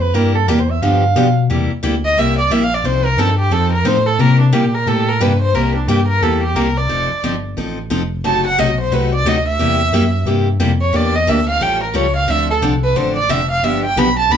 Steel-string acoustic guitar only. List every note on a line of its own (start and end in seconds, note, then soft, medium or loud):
0.14 0.35 C3 medium
0.14 0.35 G3 medium
0.14 0.35 A#3 medium
0.14 0.35 E4 medium
0.14 0.35 G4 medium
0.48 0.59 C3 medium
0.48 0.59 G3 medium
0.48 0.59 A#3 medium
0.48 0.59 E4 loud
0.48 0.60 G4 loud
0.82 1.03 D3 medium
0.82 1.03 F3 medium
0.82 1.03 B3 medium
0.82 1.03 D4 medium
0.82 1.03 G4 medium
1.16 1.27 D3 loud
1.16 1.27 F3 medium
1.16 1.27 B3 loud
1.16 1.27 D4 loud
1.16 1.27 G4 loud
1.50 1.70 C3 medium
1.50 1.70 G3 medium
1.50 1.71 A#3 medium
1.50 1.71 E4 medium
1.50 1.71 G4 medium
1.83 1.94 C3 medium
1.83 1.94 G3 medium
1.83 1.94 A#3 medium
1.83 1.94 E4 loud
1.83 1.94 G4 medium
2.18 2.38 C3 medium
2.18 2.38 G3 medium
2.18 2.38 A#3 medium
2.18 2.38 E4 medium
2.18 2.38 G4 medium
2.51 2.62 C3 medium
2.51 2.62 G3 medium
2.51 2.62 A#3 loud
2.51 2.62 E4 medium
2.51 2.62 G4 loud
2.84 3.05 F3 medium
2.84 3.05 C4 medium
2.84 3.06 D#4 medium
2.84 3.06 A4 medium
3.18 3.29 F3 medium
3.18 3.29 C4 loud
3.18 3.29 D#4 medium
3.18 3.30 A4 loud
3.51 3.72 F3 medium
3.51 3.72 C4 medium
3.51 3.72 D#4 medium
3.51 3.73 A4 medium
3.85 3.96 F3 medium
3.85 3.96 C4 medium
3.85 3.96 D#4 loud
3.85 3.97 A4 loud
4.19 4.40 C3 medium
4.19 4.40 G3 medium
4.19 4.40 A#3 medium
4.19 4.40 E4 medium
4.19 4.40 G4 medium
4.53 4.64 C3 medium
4.53 4.64 G3 medium
4.53 4.64 A#3 medium
4.53 4.64 E4 loud
4.53 4.64 G4 loud
4.87 5.08 C3 medium
4.87 5.08 G3 medium
4.87 5.08 A#3 medium
4.87 5.08 E4 medium
4.87 5.08 G4 medium
5.21 5.32 C3 medium
5.21 5.32 G3 medium
5.21 5.32 A#3 loud
5.21 5.32 E4 loud
5.21 5.32 G4 medium
5.55 5.75 C3 medium
5.55 5.75 G3 medium
5.55 5.75 A#3 medium
5.55 5.75 E4 medium
5.55 5.76 G4 medium
5.88 5.99 C3 medium
5.88 5.99 G3 medium
5.88 5.99 A#3 loud
5.88 6.00 E4 medium
5.88 6.00 G4 loud
6.22 6.43 C3 medium
6.22 6.43 G3 medium
6.22 6.43 A#3 medium
6.22 6.43 E4 medium
6.22 6.43 G4 medium
6.56 6.67 C3 medium
6.56 6.67 G3 medium
6.56 6.67 A#3 medium
6.56 6.67 E4 medium
6.56 6.67 G4 medium
6.89 7.10 F3 medium
6.89 7.10 C4 medium
6.89 7.10 D#4 medium
6.89 7.10 A4 medium
7.24 7.34 F3 medium
7.24 7.34 C4 medium
7.24 7.35 D#4 loud
7.24 7.35 A4 loud
7.57 7.78 F3 medium
7.57 7.78 C4 medium
7.57 7.78 D#4 medium
7.57 7.78 A4 medium
7.90 8.01 F3 medium
7.90 8.02 C4 medium
7.90 8.02 D#4 medium
7.90 8.02 A4 loud
8.24 8.45 C3 medium
8.24 8.45 F#3 medium
8.24 8.45 A3 medium
8.24 8.45 D#4 medium
8.24 8.45 F#4 medium
8.58 8.69 C3 medium
8.58 8.69 F#3 medium
8.58 8.69 A3 loud
8.58 8.69 D#4 loud
8.58 8.70 F#4 loud
8.92 9.12 C3 medium
8.92 9.12 F#3 medium
8.92 9.13 A3 medium
8.92 9.13 D#4 medium
8.92 9.13 F#4 medium
9.26 9.37 C3 medium
9.26 9.37 F#3 medium
9.26 9.37 A3 loud
9.26 9.37 D#4 medium
9.26 9.37 F#4 loud
9.59 9.80 C3 medium
9.59 9.80 G3 medium
9.59 9.80 A#3 medium
9.59 9.80 E4 medium
9.59 9.80 G4 medium
9.93 10.04 C3 loud
9.93 10.04 G3 medium
9.93 10.04 A#3 loud
9.93 10.04 E4 loud
9.93 10.04 G4 loud
10.26 10.47 C3 medium
10.26 10.47 G3 medium
10.26 10.47 A#3 medium
10.26 10.47 E4 medium
10.26 10.48 G4 medium
10.60 10.71 C3 medium
10.60 10.71 G3 loud
10.60 10.71 A#3 medium
10.60 10.71 E4 medium
10.60 10.71 G4 loud
10.93 11.14 E3 medium
10.93 11.14 A#3 medium
10.93 11.14 D4 medium
10.93 11.15 G4 medium
11.27 11.38 E3 medium
11.27 11.39 A#3 loud
11.27 11.39 D4 loud
11.27 11.39 G4 loud
11.60 11.81 F3 medium
11.60 11.82 G3 medium
11.60 11.82 C#4 medium
11.60 11.82 F4 medium
11.60 11.82 A4 medium
11.94 12.05 F3 loud
11.94 12.06 G3 medium
11.94 12.06 C#4 medium
11.94 12.06 F4 medium
11.94 12.06 A4 medium
12.28 12.49 D3 medium
12.28 12.49 F3 medium
12.28 12.49 C4 medium
12.28 12.49 D4 medium
12.28 12.49 A4 medium
12.62 12.73 D3 medium
12.62 12.73 F3 medium
12.62 12.73 C4 medium
12.62 12.73 D4 medium
12.62 12.73 A4 loud
12.96 13.16 D3 medium
12.96 13.16 F3 medium
12.96 13.17 C4 medium
12.96 13.17 D4 medium
12.96 13.17 A4 medium
13.29 13.40 D3 loud
13.29 13.40 F3 medium
13.29 13.40 C4 loud
13.29 13.41 D4 medium
13.29 13.41 A4 loud
13.64 13.84 D3 medium
13.64 13.84 F3 medium
13.64 13.84 B3 medium
13.64 13.84 D4 medium
13.64 13.84 G4 medium
13.97 14.08 D3 loud
13.97 14.08 F3 loud
13.97 14.08 B3 loud
13.97 14.08 D4 loud
13.97 14.08 G4 loud
14.31 14.37 D3 medium
14.31 14.37 F3 medium
14.31 14.37 B3 medium
14.31 14.37 D4 medium
14.31 14.37 G4 medium